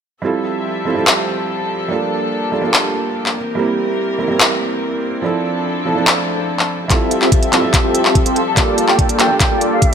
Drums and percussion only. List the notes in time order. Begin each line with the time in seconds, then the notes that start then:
1.07 clap
2.74 clap
3.26 clap
4.40 clap
6.07 clap
6.59 clap
6.90 kick, clap, closed hi-hat
7.11 closed hi-hat
7.22 clap
7.32 kick, closed hi-hat
7.43 closed hi-hat
7.53 clap, closed hi-hat
7.74 kick, clap, closed hi-hat
7.95 closed hi-hat
8.05 clap
8.15 kick, closed hi-hat
8.26 closed hi-hat
8.36 closed hi-hat
8.57 kick, clap, closed hi-hat
8.78 closed hi-hat
8.88 clap
8.99 kick, closed hi-hat
9.09 closed hi-hat
9.19 clap, closed hi-hat
9.40 kick, clap, closed hi-hat
9.61 closed hi-hat
9.82 kick, closed hi-hat